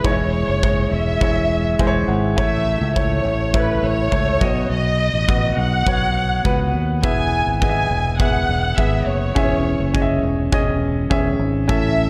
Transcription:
0.04 E1 E3 G#3 D#4 C#5, kick
0.11 E4
0.47 F#1
0.63 G#3 E4 C#5, kick
0.91 E1 E5
1.21 E1 G#3 E4 C#5, kick
1.79 E1 G#3 E4 C5 G#5, kick
1.87 C#5
2.08 G#1 F#5
2.36 A1 A2 A3 E4 C#5 E5, kick
2.81 C#2
2.96 A3 E4 C#5, kick
3.24 A1
3.53 A3 E4 B4 C#5, kick
3.83 A1 C#5
4.12 C#2 A3 E4 C#5, kick
4.40 B1 B2 B3 F#4 D#5, kick
4.70 B1 D#5
5.14 A1
5.28 B3 F#4 D#5, kick
5.57 B1 F#5
5.86 B1 B3 F#4 C#5, kick
6.44 C#2 B3 F#4 B4, kick
6.74 D#2
7.03 E1 E3 B3 G#4 E5 G#5, kick
7.47 G#1
7.61 B3 G#4 D#5 G#5, kick
7.69 E5
7.91 E1
8.19 B3 G#4 E5 F#5, kick
8.49 E1
8.76 G#1 B3 G#4 E5, kick
9.06 F#1 C#5
9.35 E1 E3 C#4 G#4 E5, kick
9.80 F#1
9.94 C#4 G#4 D#5, kick
10.02 E5
10.23 E1
10.52 E1 C#4 G#4 D#5, kick
11.10 E1 C#4 G#4 E5, kick
11.39 G#1
11.68 A1 A2 C#4 A4 E5, kick

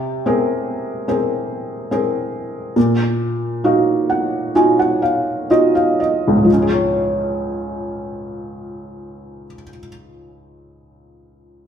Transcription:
Already playing: C3
0.26 C4 G#4 A#4
1.08 C4 G#4 A#4
1.91 C4 G#4 A#4
2.76 A#2
3.64 D#4 F#4 F5
4.10 F#5
4.55 D#4 F4 F#4 G#5
4.79 F#5
5.02 F5
5.50 D#4 F4 F#4 D#5
5.75 F5
6.00 D#5
6.28 C#2
6.36 G#2
6.45 F3
6.53 C#4
6.62 G#4
6.71 C#5

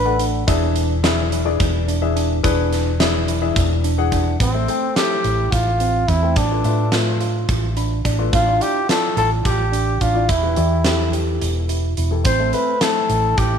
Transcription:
Already playing: A1 D4 B4
0.05 A3 A4 D5 F#5
0.19 D4, closed hi-hat
0.47 E1 E3 D4 G#4 E5, kick, closed hi-hat
0.76 closed hi-hat
1.03 E3 D4 E4 G#4 E5, snare, closed hi-hat
1.32 E4, closed hi-hat
1.45 E3 D4 G#4 D5
1.60 E1, kick, closed hi-hat
1.88 D4, closed hi-hat
2.02 E3 D4 G#4 E5
2.16 D4, closed hi-hat
2.43 E1 E3 D4 G#4 B4, kick, closed hi-hat
2.73 snare, closed hi-hat
3.00 E3 D4 E4 G#4 E5, snare, closed hi-hat
3.28 E4, closed hi-hat
3.42 E3 D4 G#4 E5
3.56 E1, kick, closed hi-hat
3.84 D4, closed hi-hat
3.98 E3 D4 G#4 F#5
4.12 D4, kick, closed hi-hat
4.40 A1 C4, kick, closed hi-hat
4.54 A3 A4 C5 E5
4.68 A3 A4 C5 G5, closed hi-hat
4.96 A3 E4 G4 A4 C5 E5, snare, closed hi-hat
5.24 A1 E4, closed hi-hat
5.52 A1 F4, kick, closed hi-hat
5.80 C4, closed hi-hat
6.08 E2 C4 E4, kick, closed hi-hat
6.22 A3 A4 C5 G5
6.36 A1 D4, kick, closed hi-hat
6.51 A3 F4 B4 D5
6.64 A2 A3 F4 B4 E5, closed hi-hat
6.92 A3 F4 B4 E5, snare, closed hi-hat
7.20 F4, closed hi-hat
7.49 A1, kick, closed hi-hat
7.77 D4 B5, closed hi-hat
8.05 A1 D4 D5, kick, closed hi-hat
8.19 A3 F4 B4 D5
8.33 A1 D4 F4, kick, closed hi-hat
8.47 E4 F4 D5
8.60 E4 F4 G4 D5, closed hi-hat
8.88 E4 F4 A4 D5, snare, closed hi-hat
9.17 A1 F4 A4, closed hi-hat
9.45 A1 G4, kick, closed hi-hat
9.72 D4, closed hi-hat
10.01 A1 D4 F4, kick, closed hi-hat
10.15 E4 F4 D5
10.29 E1 E4, kick, closed hi-hat
10.42 E3 E4 G4 B4
10.56 E2 E3 E4 G4 D5, closed hi-hat
10.85 E3 E4 G4 A4, snare, closed hi-hat
11.13 G4, closed hi-hat
11.42 E1, closed hi-hat
11.69 E4, closed hi-hat
11.97 E1 E4, closed hi-hat
12.11 E3 E4 G4 A4
12.25 A1 C4 C5, kick, closed hi-hat
12.39 A3 A4 C5 E5
12.53 A3 A4 B4 C5 E5, closed hi-hat
12.81 A3 E4 A4 C5 E5, snare, closed hi-hat
13.09 A1 E4, closed hi-hat
13.38 A1 G4, kick, closed hi-hat

